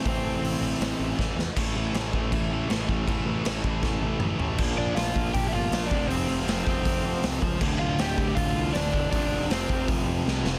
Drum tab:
CC |--------|x-x-x-x-|x-x-----|x-------|
HH |o-o-o---|--------|--------|--o-o-o-|
SD |----o-oo|--o---o-|--o-o---|--o---o-|
T2 |--------|--------|------o-|--------|
FT |--------|--------|-------o|--------|
BD |o-----o-|o--oo--o|o--oo---|o--oo--o|

CC |--------|x-------|--------|
HH |o-o-o-o-|--o-o-o-|o-o-o---|
SD |--o---o-|--o---o-|--o---oo|
T2 |--------|--------|--------|
FT |--------|--------|--------|
BD |---oo--o|o--oo--o|o--oo---|